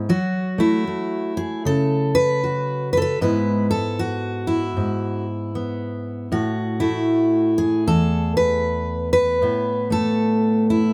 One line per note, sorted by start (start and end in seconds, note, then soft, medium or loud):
0.00 0.10 G#2 medium
0.00 0.11 E4 medium
0.09 3.17 F#3 medium
0.09 1.36 F#4 medium
0.58 0.86 A3 medium
0.58 2.14 E4 medium
0.87 3.17 A3 soft
1.37 1.66 G#4 medium
1.65 3.17 C#3 medium
1.65 2.43 A4 loud
2.15 2.92 B4 loud
2.44 2.97 F#4 medium
2.93 3.01 B4 loud
2.97 3.21 A4 medium
3.02 3.21 B4 loud
3.21 4.75 G#2 medium
3.21 3.70 G#3 soft
3.21 5.55 B3 medium
3.21 3.99 E4 soft
3.21 3.70 B4 medium
3.71 3.99 A4 medium
3.99 5.25 F#4 medium
4.47 6.32 E4 medium
4.77 6.28 G#2 medium
5.55 6.35 B3 soft
6.32 7.87 A2 medium
6.32 7.57 F#4 medium
6.80 9.46 A3 medium
6.80 7.87 E4 medium
7.58 8.65 G#4 medium
7.87 9.42 E2 medium
7.87 8.35 A4 medium
8.37 9.12 B4 loud
9.13 9.90 B4 loud
9.42 10.93 A2 medium
9.42 10.93 B3 soft
9.90 10.93 A3 medium
9.90 10.69 A4 medium
10.70 10.93 E4 medium